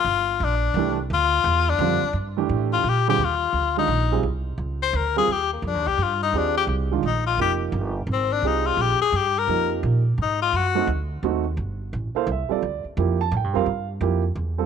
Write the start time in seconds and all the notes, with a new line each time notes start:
Already playing: F4
0.04 G1
0.40 A#1
0.45 D4
0.74 C2 E3 A3 D4 G4
1.10 D2 F4
1.44 E2
1.70 D4
1.79 F2 D3 G3 C4 F4
2.02 muted upright bass stroke
2.13 G2
2.37 E3 A3 D4 G4
2.49 A2
2.73 F4
2.83 A#2
2.89 G4
3.08 D3 G3 C4 F4 G4 G#4
3.18 D#2
3.25 F4
3.53 D2
3.77 D#3 G#3 D4 D#4 F4
3.88 A#1
4.11 G3 C4 F4 G#4
4.23 C2
4.58 C#2
4.83 C5
4.93 D2 A#4
5.16 G3 C4 F4 G#4
5.27 D#2
5.32 G4
5.53 A#3
5.62 F2
5.67 D4
5.74 D#2
5.86 C2 G4
5.98 G2
6.03 F4
6.23 D#4
6.33 D#2 C4 F4 G4 G#4
6.38 D4
6.58 G4
6.67 C2
6.92 D#3 G#3 D4 F4
7.03 A#1
7.07 D#4
7.27 F4
7.37 F1 F3 A#3 D#4 G4
7.41 G4
7.72 G1
8.07 G#1
8.13 C4
8.33 D4
8.42 C2 C4 F4 G4 G#4
8.47 D#4
8.66 F4
8.77 A#1
8.82 G4
9.00 G#4, muted upright bass stroke
9.12 G2 G4
9.39 A#4
9.47 F2 F3 A#3 D#4 G4
9.83 A#2
10.18 G#2
10.22 D#4
10.42 F4
10.53 F#2 F#4
10.75 A3 C4 D#4 F#4
10.87 D2
11.23 D#2 A3 C4 D#4 F#4
11.57 G1
11.93 A1
12.15 A#3 E4 A4 C5 F5, muted upright bass stroke
12.27 C2
12.32 E5
12.49 G3 C4 F4 A4 D5, muted upright bass stroke
12.62 D2
12.84 muted upright bass stroke
12.97 F2 F3 A#3 E4 G4
13.21 A5
13.31 A2
13.37 G5
13.44 G2
13.54 F2 G3 C4 F4 A#4 F5
13.66 G2
14.01 F2 F3 A#3 E4 G4
14.35 E2
14.58 G3 C4 F4 A4